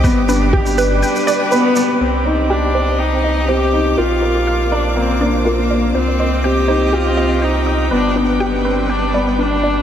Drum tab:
SH |x-x--xx-xxx-x-x-|----------------|----------------|----------------|
BD |o---o-----------|----------------|----------------|----------------|

SH |----------------|
BD |----------------|